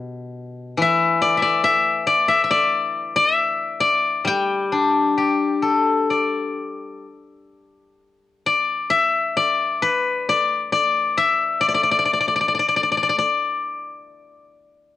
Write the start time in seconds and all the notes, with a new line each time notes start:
Already playing: B2 G4 A4 B4
0.77 E3
0.82 E5
1.22 D5
1.37 E5
1.42 D5
1.64 E5
2.07 D5
2.28 E5
2.44 E5
2.51 D5
3.16 D5
3.35 E5
3.80 D5
4.25 G3 G5
4.72 D4
5.18 G4
5.62 A4
6.10 D5
8.46 D5
8.90 E5
9.37 D5
9.82 B4
10.29 D5
10.72 D5
11.17 E5
11.61 D5
11.68 D5
11.74 D5
11.83 D5
11.91 D5
11.99 D5
12.05 D5
12.13 D5
12.20 D5
12.28 D5
12.36 D5
12.41 D5
12.48 D5
12.54 D5
12.59 D5
12.68 D5
12.76 D5
12.83 D5
12.92 D5
12.97 D5
13.03 D5
13.09 D5
13.19 D5